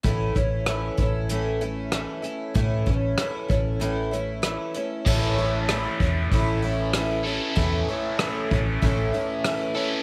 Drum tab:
CC |--------|--------|x-------|--------|
HH |xxxxxxxx|xxxxxxxx|-ooooooo|oooooooo|
SD |--r---r-|--r---r-|--r---r-|--r---r-|
BD |oo-o----|oo-o----|o--oo---|o--oo---|